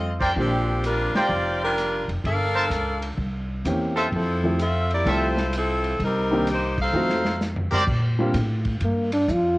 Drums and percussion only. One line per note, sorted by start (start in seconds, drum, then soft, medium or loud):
0.21 kick medium
0.21 crash medium
0.36 kick soft
0.84 hi-hat pedal medium
0.84 ride medium
1.15 snare medium
1.15 ride medium
1.78 hi-hat pedal soft
1.78 ride medium
2.09 ride soft
2.24 kick soft
2.24 ride medium
2.71 hi-hat pedal medium
2.71 ride medium
3.02 ride medium
3.18 kick soft
3.65 hi-hat pedal medium
3.65 ride medium
3.97 ride soft
4.12 kick soft
4.12 ride medium
4.59 hi-hat pedal medium
4.59 ride medium
4.90 ride soft
5.06 kick soft
5.06 ride medium
5.37 snare medium
5.53 hi-hat pedal medium
5.53 ride medium
5.84 ride soft
6.00 kick soft
6.00 ride medium
6.47 hi-hat pedal medium
6.47 ride medium
6.78 kick medium
6.78 crash medium
7.09 snare soft
7.25 snare medium
7.41 snare medium
7.41 hi-hat pedal medium
7.56 floor tom medium
7.72 floor tom medium
7.87 kick medium
7.87 crash medium
8.34 kick soft
8.34 hi-hat pedal soft
8.34 ride medium
8.65 kick soft
8.65 ride soft
8.81 kick soft
8.81 ride medium
9.12 ride medium
9.28 kick soft
9.28 hi-hat pedal soft